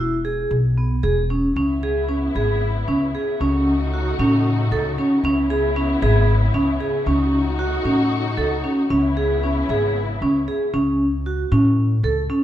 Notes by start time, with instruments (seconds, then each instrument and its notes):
Already playing: upright bass E1
0.00 vibraphone E4
0.25 vibraphone G#4
0.51 upright bass B1
0.78 vibraphone B3
1.03 upright bass E1, vibraphone G#4
1.30 vibraphone C#4
1.56 upright bass C#2, string section C#3 B3 E4, vibraphone C#4
1.83 vibraphone G#4
2.09 vibraphone C#4
2.35 upright bass G#1, vibraphone G#4
2.88 upright bass C#2, vibraphone C#4
3.15 vibraphone G#4
3.40 upright bass C#2, string section A3 D#4 F#4, vibraphone C#4
3.93 vibraphone F#4
4.19 upright bass A2, vibraphone C#4
4.71 upright bass C#2, vibraphone A4
4.98 vibraphone C#4
5.24 upright bass C#2, string section B3 E4, vibraphone C#4
5.50 vibraphone G#4
5.76 vibraphone C#4
6.02 upright bass G#1, vibraphone G#4
6.54 upright bass C#2, vibraphone C#4
6.80 vibraphone G#4
7.06 upright bass C#2, string section A3 D#4 F#4, vibraphone C#4
7.59 vibraphone F#4
7.85 upright bass A2, vibraphone C#4
8.37 upright bass C#2, vibraphone A4
8.64 vibraphone C#4
8.90 upright bass C#2, string section C#3 B3 E4, vibraphone C#4
9.17 vibraphone G#4
9.43 vibraphone C#4
9.69 upright bass G#1, vibraphone G#4
10.22 upright bass C#2, vibraphone C#4
10.48 vibraphone G#4
10.74 upright bass C#2, vibraphone C#4
11.26 vibraphone F#4
11.52 upright bass A2, vibraphone C#4
12.03 upright bass C#2, vibraphone A4
12.30 vibraphone C#4